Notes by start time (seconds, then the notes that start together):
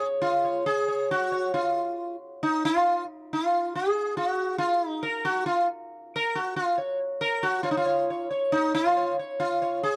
Already playing: C#5
0.22 F4
0.45 C#5
0.66 G#4
0.88 C#5
1.11 F#4
1.32 C#5
1.54 F4
2.43 D#4
2.65 F4
3.33 F4
3.75 G#4
4.17 F4
4.29 F#4
4.58 F4
4.88 D#4
5.03 A#4
5.25 F#4
5.46 F4
6.16 A#4
6.35 F#4
6.56 F4
6.78 C#5
7.21 A#4
7.43 F#4
7.63 F4 C#5
7.71 D#4
7.77 F4
7.85 C#5
8.10 C#5
8.31 C#5
8.52 D#4
8.75 F4
8.97 C#5
9.19 C#5
9.40 F4
9.62 C#5
9.83 G#4